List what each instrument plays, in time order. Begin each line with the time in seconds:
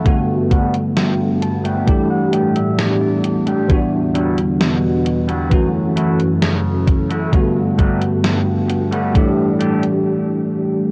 Already playing: string machine A4
0.05 clean electric guitar G2, string machine G2 B3 F#4, tine electric piano D3 G3 A3 B3 F#4, kick, closed hi-hat
0.50 clean electric guitar G3 A3 B3 F#4, kick, closed hi-hat
0.74 closed hi-hat
0.97 clean electric guitar G2, snare, closed hi-hat
1.41 clean electric guitar A5, muted clean electric guitar stroke, closed hi-hat
1.64 clean electric guitar G3 A3 B3 F#4 G5, closed hi-hat
1.86 clean electric guitar A2, string machine A2 G3 D4, tine electric piano E3 G3 A3 D4 G4, kick, closed hi-hat
2.10 clean electric guitar F#5
2.32 clean electric guitar A3 D4 G4, closed hi-hat
2.56 clean electric guitar E5, closed hi-hat
2.78 clean electric guitar E2 D5, snare, closed hi-hat
3.01 clean electric guitar D5
3.23 muted clean electric guitar stroke, closed hi-hat
3.46 clean electric guitar A3 D4 G4, closed hi-hat
3.68 clean electric guitar E2, string machine E2 D3 F#4, tine electric piano E3 G3 B3 D4 F#4, kick, closed hi-hat
4.14 clean electric guitar G3 D4 E4 F#4, closed hi-hat
4.38 closed hi-hat
4.60 clean electric guitar B2, snare, closed hi-hat
5.05 muted clean electric guitar stroke, closed hi-hat
5.28 clean electric guitar G3 D4 E4 F#4, closed hi-hat
5.50 clean electric guitar F#2, string machine F#2 E3 A4, tine electric piano E3 F#3 A3 C#4 F#4, kick, closed hi-hat
5.96 clean electric guitar A3 E4 F#4, closed hi-hat
6.20 closed hi-hat
6.42 clean electric guitar C#3, snare, closed hi-hat
6.87 muted clean electric guitar stroke, kick, closed hi-hat
7.10 clean electric guitar A3 E4 F#4, closed hi-hat
7.32 clean electric guitar G2, string machine G2 B3 F#4, tine electric piano D3 G3 A3 B3 F#4, kick, closed hi-hat
7.78 clean electric guitar G3 A3 B3 F#4, kick, closed hi-hat
8.01 closed hi-hat
8.24 clean electric guitar G2, snare, closed hi-hat
8.68 muted clean electric guitar stroke, closed hi-hat
8.91 clean electric guitar G3 A3 B3 F#4, closed hi-hat
9.14 clean electric guitar A2, string machine A2 G3 D4, tine electric piano E3 G3 A3 D4 G4, kick, closed hi-hat
9.59 clean electric guitar A3 D4 G4, closed hi-hat
9.83 closed hi-hat